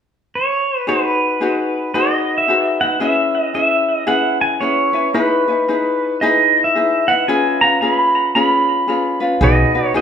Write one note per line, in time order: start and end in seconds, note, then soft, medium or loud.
0.35 0.88 C#5 medium
0.87 1.40 D#4 medium
0.87 1.41 F#4 medium
0.87 1.40 G#4 medium
0.87 1.94 B4 medium
0.87 1.42 B4 medium
1.41 1.94 D#4 medium
1.41 1.94 F#4 soft
1.41 1.94 G#4 soft
1.41 1.95 B4 medium
1.94 2.48 D#4 medium
1.94 2.48 F#4 medium
1.94 2.48 G#4 medium
1.94 2.50 B4 medium
1.94 2.39 D#5 medium
2.38 2.81 E5 medium
2.48 2.82 D#4 soft
2.48 2.81 F#4 medium
2.48 2.81 G#4 soft
2.48 2.80 B4 medium
2.81 3.00 D#4 soft
2.81 3.01 F#4 soft
2.81 3.01 B4 soft
2.81 3.01 F#5 medium
3.00 3.53 C#4 medium
3.00 3.55 E4 medium
3.00 3.54 G#4 medium
3.00 3.56 B4 medium
3.00 3.41 E5 medium
3.41 3.54 D#5 medium
3.54 4.06 C#4 soft
3.54 4.06 E4 medium
3.54 4.06 G#4 soft
3.54 4.07 B4 medium
3.54 3.95 E5 medium
3.95 4.07 D#5 medium
4.07 4.60 C#4 medium
4.07 4.62 E4 medium
4.07 4.60 G#4 medium
4.07 4.62 B4 medium
4.07 4.41 F#5 medium
4.41 4.62 G#5 medium
4.61 4.94 C#4 soft
4.61 4.93 E4 medium
4.61 4.94 G#4 soft
4.61 4.92 B4 medium
4.61 5.16 C#5 medium
4.93 5.14 C#4 soft
4.93 5.13 E4 soft
4.93 5.14 B4 soft
5.14 5.48 D#4 medium
5.14 5.48 E4 medium
5.14 5.48 G#4 medium
5.14 6.25 B4 medium
5.14 5.46 B4 medium
5.48 5.68 D#4 soft
5.48 5.68 E4 soft
5.48 5.68 B4 soft
5.68 6.21 D#4 soft
5.68 6.22 E4 medium
5.68 6.22 G#4 soft
5.68 6.23 B4 soft
6.21 6.75 D#4 medium
6.21 6.76 E4 medium
6.21 6.75 G#4 medium
6.21 6.77 B4 medium
6.21 6.66 D#5 medium
6.64 7.09 E5 medium
6.75 7.09 D#4 soft
6.75 7.08 E4 soft
6.75 7.08 G#4 soft
6.75 7.07 B4 soft
7.08 7.28 D#4 soft
7.08 7.29 E4 soft
7.08 7.28 B4 soft
7.08 7.29 F#5 medium
7.28 7.61 C#4 medium
7.28 7.62 F4 medium
7.28 7.61 G#4 medium
7.28 7.61 B4 medium
7.28 7.61 G#5 medium
7.61 7.81 C#4 soft
7.61 7.82 F4 soft
7.61 7.82 B4 soft
7.61 7.81 A#5 medium
7.81 8.35 C#4 medium
7.81 8.35 F4 soft
7.81 8.35 G#4 soft
7.81 8.36 B4 medium
7.81 7.92 A#5 medium
7.92 8.34 B5 medium
8.35 8.87 C#4 medium
8.35 8.88 F4 medium
8.35 8.87 G#4 medium
8.35 8.89 B4 medium
8.35 9.17 B5 medium
8.88 9.21 C#4 soft
8.88 9.20 F4 soft
8.88 9.21 G#4 soft
8.88 9.19 B4 medium
9.20 9.41 C#4 soft
9.20 9.41 F4 soft
9.20 9.41 B4 soft
9.41 9.62 B1 medium
9.41 9.75 D#4 medium
9.41 9.74 F#4 medium
9.41 9.74 G#4 medium
9.41 9.74 B4 medium
9.41 9.86 D#5 medium
9.75 9.94 D#4 soft
9.75 9.94 F#4 soft
9.75 9.95 B4 soft
9.86 9.96 C#5 medium
9.94 10.01 D#4 medium
9.94 10.01 F#4 medium
9.94 10.01 G#4 medium
9.94 10.01 B4 medium
9.94 10.01 F#5 medium